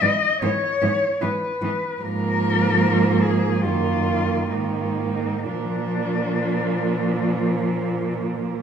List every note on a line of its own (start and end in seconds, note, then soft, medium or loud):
0.01 0.10 G#2 medium
0.01 0.10 E3 medium
0.01 0.11 B3 medium
0.01 0.41 D#5 loud
0.42 0.50 G#2 medium
0.42 0.51 E3 medium
0.42 0.50 B3 medium
0.42 1.23 C#5 loud
0.82 0.90 G#2 medium
0.82 0.91 E3 medium
0.82 0.90 B3 medium
1.21 1.30 G#2 medium
1.21 1.30 E3 medium
1.21 1.29 B3 medium
1.21 2.02 B4 medium
1.62 1.70 G#2 medium
1.62 1.70 E3 medium
1.62 1.72 B3 medium
2.01 3.65 G#2 medium
2.01 3.65 F3 medium
2.01 3.60 A#3 medium
2.01 3.23 A#4 loud
3.22 3.63 G#4 medium
3.62 4.51 F#2 medium
3.62 4.51 D#3 medium
3.62 4.50 A#3 medium
3.62 4.52 F4 medium
4.51 5.47 G#2 medium
4.51 5.47 D#3 medium
4.51 5.45 A#3 medium
4.51 4.63 D#4 medium
4.61 4.71 F4 soft
4.70 4.81 D#4 medium
4.80 4.91 F4 soft
4.90 4.99 D#4 soft
4.98 5.09 F4 medium
5.07 5.47 D#4 medium
5.46 8.62 A#2 medium
5.46 8.62 F3 medium
5.46 8.62 A#3 medium
5.46 8.29 D4 medium